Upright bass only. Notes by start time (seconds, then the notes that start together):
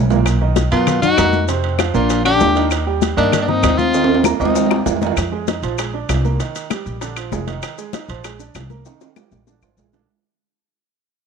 Already playing: B1
0.72 F#2
1.18 F2
1.94 A#1
2.41 D#2
3.17 G2
3.63 D#2
4.40 D#2
4.86 F2
5.16 F2
5.63 A#1
6.09 C2
6.86 A#1
7.32 F1
8.08 A#1
8.55 C2
9.31 A#1
9.62 G#1
9.77 A#1